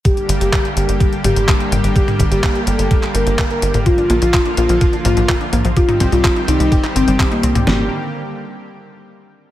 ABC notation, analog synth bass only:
X:1
M:4/4
L:1/16
Q:1/4=126
K:Gm
V:1 name="Analog synth bass" clef=bass
z2 G,,, G,,, z2 G,,, G,,, z2 G,,, G,,, z2 G,,, G,,, | z2 G,,, G,,, z2 G,,, G,,, z2 G,,, G,,, z2 G,,, G,,, | z2 B,,, B,,, z2 B,,, B,,, z2 B,,, B,,, z2 B,,, B,,, | z2 C,, C,, z2 C,, C,, z2 G,,, G,,, z2 C,, C,, |
G,,,2 z12 z2 |]